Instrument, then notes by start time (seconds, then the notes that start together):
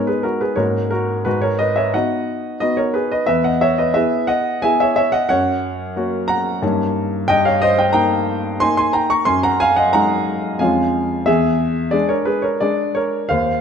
grand piano
Already playing: G#3 B3 D#4
0.07 G#4 B4
0.23 F#4 A#4
0.41 G#4 B4
0.56 G#2 A#3 C#4 F#4 A#4 C#5
0.90 F#4 A#4
1.25 G#2 F#4 B4
1.42 A#4 C#5
1.59 B4 D#5
1.76 C#5 E5
1.94 B3 D#4 F#4 D#5 F#5
2.60 B3 D#4 F#4 B4 D#5
2.77 A#4 C#5
2.94 G#4 B4
3.12 B4 D#5
3.26 E2 B4 E5
3.44 D#5 F#5
3.61 C#5 E5
3.78 B4 D#5
3.94 B3 E4 G#4 B4 E5
4.27 D#5 F#5
4.62 B3 E4 G#4 E5 G#5
4.80 C#5 E5
4.96 C#5 E5
5.12 D#5 F#5
5.29 F#2 C#5 F#5
5.96 A#3 C#4 F#4
6.28 F#5 A#5
6.62 G2 A#3 C#4 D#4
7.28 G2 D#5 G5
7.45 C#5 F5
7.62 C5 D#5
7.79 D#5 G5
7.93 A#3 D#4 G5 A#5
8.60 A#3 D#4 G#5 C6
8.77 G#5 C6
8.93 G5 A#5
9.10 A#5 C#6
9.25 F#2 G#5 C6
9.43 F#5 A#5
9.60 F5 G#5
9.76 D#5 F#5
9.93 G#3 D#4 F#5 A#5
10.59 F2 G#3 C#4 F4 F5 G#5
11.26 E2 G#4 E5
11.91 G#3 D4 G#4 D5
12.09 A#4 C#5
12.25 G#4 B4
12.42 A#4 C#5
12.60 G#3 D4 G#4 D5
12.95 A#4 C#5
13.29 D#2 C5 F5